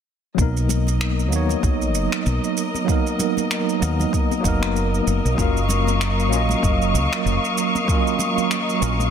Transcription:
0.35 1.32 B1 medium
0.35 1.27 F#3 medium
0.35 1.28 A#3 medium
0.35 1.29 B3 medium
0.35 9.10 A#4 medium
0.35 5.34 D#5 medium
0.35 9.10 D#5 medium
0.35 9.10 D#6 medium
0.35 kick loud
0.39 1.30 D#4 medium
0.39 1.31 A#4 medium
0.39 shaker soft
0.57 shaker soft
0.69 high conga medium
0.69 low conga medium
0.69 shaker medium
0.87 high conga medium
0.87 shaker soft
1.01 finger snap medium
1.01 shaker soft
1.19 shaker soft
1.28 1.54 D#2 medium
1.28 2.83 F#3 medium
1.28 2.84 A#3 medium
1.28 2.85 B3 medium
1.33 2.86 D#4 medium
1.33 2.87 C#5 medium
1.33 shaker medium
1.49 low conga medium
1.49 shaker soft
1.63 1.95 B1 medium
1.63 kick loud
1.63 shaker soft
1.82 shaker soft
1.95 2.06 F#1 medium
1.95 shaker medium
2.12 finger snap medium
2.12 shaker soft
2.26 2.38 B1 medium
2.26 shaker soft
2.44 shaker soft
2.57 shaker medium
2.74 high conga medium
2.74 shaker soft
2.84 3.77 F#3 medium
2.84 3.78 A#3 medium
2.84 3.79 B3 medium
2.84 kick loud
2.89 3.80 D#4 medium
2.89 3.81 A#4 loud
2.89 shaker soft
3.07 shaker soft
3.19 high conga medium
3.19 low conga medium
3.19 shaker medium
3.37 high conga medium
3.37 shaker soft
3.51 finger snap medium
3.51 shaker soft
3.69 shaker soft
3.80 4.04 D#2 medium
3.80 4.39 F#3 medium
3.80 4.41 A#3 medium
3.80 4.41 B3 medium
3.80 4.42 D#4 medium
3.80 4.42 A#4 medium
3.80 shaker medium
4.00 high conga medium
4.00 low conga medium
4.00 shaker soft
4.13 kick loud
4.13 shaker soft
4.31 high conga medium
4.31 shaker soft
4.40 4.99 F#1 medium
4.40 5.33 F#3 medium
4.40 5.34 A#3 medium
4.40 kick loud
4.45 5.35 B3 medium
4.45 5.36 D#4 medium
4.45 5.37 A#4 loud
4.45 shaker medium
4.63 finger snap medium
4.63 shaker soft
4.76 shaker soft
4.94 shaker soft
5.07 5.18 F#1 medium
5.07 shaker medium
5.25 5.33 B1 medium
5.25 shaker soft
5.34 6.32 F#1 medium
5.34 6.27 F#3 medium
5.34 6.28 A#3 medium
5.34 6.29 C#4 medium
5.34 9.10 F5 medium
5.34 9.10 C#6 medium
5.34 kick loud
5.39 6.30 F4 medium
5.39 6.31 A#4 medium
5.39 shaker soft
5.57 shaker soft
5.69 high conga medium
5.69 low conga medium
5.69 shaker medium
5.87 high conga medium
5.87 shaker soft
6.01 finger snap medium
6.01 shaker soft
6.20 shaker soft
6.28 6.54 A#1 medium
6.28 7.83 F#3 medium
6.28 7.84 A#3 medium
6.28 7.85 C#4 medium
6.33 7.86 F4 medium
6.33 7.87 D#5 loud
6.33 shaker medium
6.49 low conga medium
6.49 shaker soft
6.63 6.96 F#1 medium
6.63 kick loud
6.63 shaker soft
6.82 shaker soft
6.94 7.06 C#2 medium
6.94 shaker medium
7.13 finger snap medium
7.13 shaker soft
7.26 7.37 F#1 medium
7.26 shaker soft
7.45 shaker soft
7.58 shaker medium
7.75 high conga medium
7.75 shaker soft
7.84 8.77 F#3 medium
7.84 8.78 A#3 medium
7.84 8.79 C#4 medium
7.84 kick loud
7.89 8.80 F4 medium
7.89 8.81 A#4 medium
7.89 shaker soft
8.07 shaker soft
8.19 high conga medium
8.19 low conga medium
8.19 shaker medium
8.38 high conga medium
8.38 shaker soft
8.51 finger snap medium
8.51 shaker soft
8.70 shaker soft
8.80 9.10 A#1 medium
8.80 9.10 F#3 medium
8.80 9.10 A#3 medium
8.80 9.10 C#4 medium
8.80 9.10 F4 medium
8.80 9.10 A#4 medium
8.80 shaker medium
9.00 high conga medium
9.00 low conga medium
9.00 shaker soft

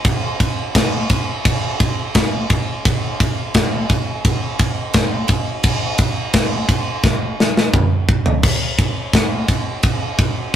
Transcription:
0.05 kick loud
0.05 ride loud
0.40 kick medium
0.40 ride medium
0.75 kick loud
0.75 snare loud
0.75 ride loud
1.10 kick medium
1.10 ride medium
1.45 kick loud
1.45 ride loud
1.80 kick medium
1.80 ride medium
2.15 kick loud
2.15 snare loud
2.15 ride loud
2.50 kick loud
2.50 ride medium
2.85 kick loud
2.85 ride loud
3.20 kick medium
3.20 ride medium
3.54 kick loud
3.54 snare loud
3.54 ride loud
3.90 kick medium
3.90 ride medium
4.25 kick loud
4.25 ride loud
4.59 kick medium
4.59 ride medium
4.93 kick loud
4.93 snare loud
4.93 ride loud
5.28 kick medium
5.28 ride medium
5.63 kick loud
5.63 ride loud
5.98 kick medium
5.98 ride medium
6.33 kick loud
6.33 snare loud
6.33 ride loud
6.69 kick medium
6.69 ride medium
7.04 kick loud
7.04 snare medium
7.40 snare medium
7.57 snare medium
7.74 kick loud
7.74 mid tom medium
8.09 kick loud
8.26 floor tom medium
8.43 kick loud
8.43 crash loud
8.43 splash medium
8.79 kick medium
8.79 ride medium
9.13 kick loud
9.13 snare loud
9.13 ride loud
9.48 kick medium
9.48 ride medium
9.83 kick loud
9.83 ride medium
10.19 kick medium
10.19 ride medium

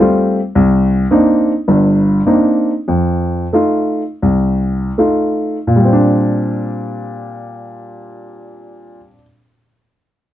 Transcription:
0.00 0.39 G3 medium
0.00 0.39 A3 soft
0.00 0.39 C4 soft
0.00 0.39 F4 medium
0.55 1.04 C2 medium
1.11 1.51 A#3 medium
1.11 1.51 C4 medium
1.11 1.51 D4 medium
1.11 1.51 D#4 medium
1.68 2.19 G1 medium
1.68 2.19 G2 medium
2.26 2.70 A#3 medium
2.26 2.70 C4 soft
2.26 2.70 D4 soft
2.26 2.70 D#4 medium
2.88 3.44 F2 medium
3.53 4.01 A3 medium
3.53 4.01 D#4 soft
3.53 4.02 F4 medium
4.22 4.89 C2 medium
4.98 5.56 A3 soft
4.98 5.56 D#4 soft
4.98 5.56 F4 soft
5.67 8.97 A#2 medium
5.76 9.06 G3 medium
5.85 9.14 C4 soft
5.93 9.23 D4 medium

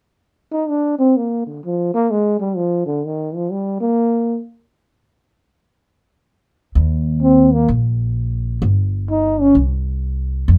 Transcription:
0.52 0.70 D#4 medium
0.69 0.98 D4 medium
0.99 1.18 C4 medium
1.17 1.46 A#3 medium
1.47 1.63 D3 soft
1.64 1.94 F3 medium
1.94 2.12 A#3 medium
2.11 2.39 G#3 medium
2.40 2.58 G3 medium
2.56 2.86 F3 medium
2.86 3.07 D3 medium
3.06 3.36 D#3 medium
3.35 3.53 F3 medium
3.51 3.80 G3 medium
3.81 4.39 A#3 medium
6.75 7.65 D#2 medium
7.22 7.55 C4 medium
7.53 7.69 A#3 medium
7.68 8.58 A#1 medium
8.62 9.51 G1 medium
9.11 9.42 D#4 medium
9.41 9.56 C#4 medium
9.55 10.44 C2 medium
10.48 10.58 F2 medium

